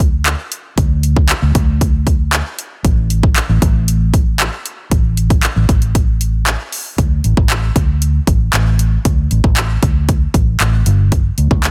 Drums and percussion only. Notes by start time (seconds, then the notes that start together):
0.00 kick, closed hi-hat
0.26 clap, closed hi-hat
0.52 closed hi-hat
0.78 kick, closed hi-hat
1.03 closed hi-hat
1.16 kick
1.29 clap, closed hi-hat
1.55 kick, closed hi-hat
1.81 kick, closed hi-hat
2.07 kick, closed hi-hat
2.32 clap, closed hi-hat
2.59 closed hi-hat
2.85 kick, closed hi-hat
3.10 closed hi-hat
3.23 kick
3.36 clap, closed hi-hat
3.62 kick, closed hi-hat
3.88 closed hi-hat
4.14 kick, closed hi-hat
4.39 clap, closed hi-hat
4.66 closed hi-hat
4.91 kick, closed hi-hat
5.17 closed hi-hat
5.30 kick, closed hi-hat
5.43 clap, closed hi-hat
5.69 kick, closed hi-hat
5.82 closed hi-hat
5.95 kick, closed hi-hat
6.21 closed hi-hat
6.46 clap, closed hi-hat
6.72 open hi-hat
6.98 kick, closed hi-hat
7.24 closed hi-hat
7.37 kick
7.50 clap, closed hi-hat
7.76 kick, closed hi-hat
8.02 closed hi-hat
8.27 kick, closed hi-hat
8.53 clap, closed hi-hat
8.79 closed hi-hat
9.05 kick, closed hi-hat
9.31 closed hi-hat
9.44 kick
9.57 clap, closed hi-hat
9.83 kick, closed hi-hat
10.09 kick, closed hi-hat
10.34 kick, closed hi-hat
10.60 clap, closed hi-hat
10.86 closed hi-hat
11.12 kick, closed hi-hat
11.38 closed hi-hat
11.51 kick
11.64 clap, closed hi-hat